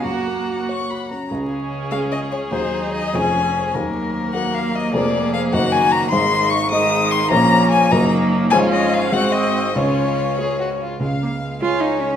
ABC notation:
X:1
M:6/8
L:1/16
Q:3/8=99
K:F#
V:1 name="Violin"
a6 c'2 b2 a2 | [K:Db] z6 f2 e2 d2 | c4 e2 a6 | z6 g2 f2 e2 |
=d4 f2 g2 a2 b2 | c'4 d'2 e'4 c'2 | b4 a2 b2 z4 | a2 e2 f2 g2 e4 |
d8- d2 z2 | f6 a6 |]
V:2 name="Violin"
f8- f2 z2 | [K:Db] A12- | A12 | B12 |
A6 G6 | E6 E6 | D6 E6 | F6 G6 |
F6 A2 G2 F2 | f6 d6 |]
V:3 name="Viola"
A,8- A, z3 | [K:Db] D12 | E6 D6 | B,12- |
B,12 | A,6 A,6 | B,6 B,6 | D6 C6 |
D8- D2 z2 | A,2 B,2 A,8 |]
V:4 name="Grand piano" clef=bass
F,,2 A,2 F2 c2 F2 C2 | [K:Db] [D,,D,]6 [A,DA]6 | [E,,E,A,GA]6 [F,,,F,,DFA]6 | [E,,E,]6 [B,GB]6 |
[F,,,F,,B,AB]6 [G,,,G,,B,Ge]6 | [A,,,A,,]6 [A,Ee]6 | [B,,,B,,F,DB]6 [G,,,G,,G,EB]6 | [A,,,A,,F,Fd]6 [A,,,A,,A,Gc]6 |
[D,,D,]6 [A,Fd]6 | [D,,D,]6 [A,Ff]6 |]
V:5 name="Cello" clef=bass
F6 z6 | [K:Db] D,12 | G,6 F,6 | G,12 |
F,6 E,6 | E,6 E,6 | F,6 G,6 | A,6 A,6 |
A,8- A,2 z2 | z6 F2 E2 D2 |]